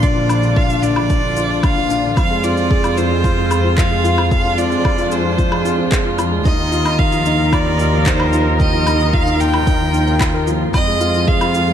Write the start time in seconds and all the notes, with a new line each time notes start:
Already playing: A#1 D3 F3 A#3 D4 F4
0.02 D3 D5, kick, shaker
0.16 F3
0.29 D4, low woodblock, shaker
0.43 D3, shaker
0.56 F4 F5, kick
0.70 D4, shaker
0.83 D3 D5, shaker
0.96 F3, low woodblock
1.10 D4, kick, shaker
1.23 D3
1.37 F4, shaker
1.50 D4
1.63 D3 F5, kick, low woodblock, shaker
1.77 F3
1.90 D4, shaker
2.04 D3
2.17 F2 F3 G#3 C4 F5, kick, low woodblock, shaker
2.31 G#3
2.44 F4 D5, shaker
2.57 F3, shaker
2.71 G#4, kick
2.84 F4, low woodblock, shaker
2.97 F3 C5, shaker
3.11 G#3
3.24 F4, kick, shaker
3.38 F3
3.51 G#4, low woodblock, shaker
3.64 F4
3.78 F3 F5, kick, clap, shaker
3.91 G#3
4.04 F4, shaker
4.18 F3, low woodblock
4.31 D4 G#4 F5, kick, shaker
4.45 F4
4.58 F3 D5, shaker
4.71 G#3, shaker
4.84 F4, kick, low woodblock
4.98 F3, shaker
5.11 G#4 C5, shaker
5.25 F4
5.38 F3, kick, shaker
5.51 G#3, low woodblock
5.65 F4, shaker
5.78 F3
5.91 G#4, kick, clap, shaker
6.05 F4
6.18 F3, low woodblock, shaker
6.32 G#3
6.45 D#2 D#3 D#4 A#4 D#5, kick, shaker
6.58 D#3
6.72 F4, shaker
6.85 D#4, low woodblock, shaker
6.99 D#3 F5, kick
7.12 F3, shaker
7.26 D#4, shaker
7.39 D#3
7.52 F4 D5, kick, low woodblock, shaker
7.66 D#4
7.79 D#3, shaker
7.93 F3
8.06 D#4 C5, kick, clap, shaker
8.20 D#3, low woodblock
8.33 F4, shaker
8.47 D#4
8.60 D#3 D#5, kick, shaker
8.73 F3
8.87 D#4, low woodblock, shaker
9.00 D#3, shaker
9.13 F4 F5, kick
9.27 D#4, shaker
9.40 D#3 G5, shaker
9.53 F3, low woodblock
9.67 D#4, kick, shaker
9.80 D#3
9.93 D#4, shaker
10.07 A#4, shaker
10.21 F4, kick, clap, low woodblock, shaker
10.34 A#4
10.47 F3, shaker
10.61 F4
10.74 F2 F3 G#3 C4 F4 D#5, kick, low woodblock, shaker
10.88 G#3
11.01 F4, shaker
11.14 F3, shaker
11.27 G#4 F5, kick
11.41 F4, low woodblock, shaker
11.54 F3, shaker
11.68 G#3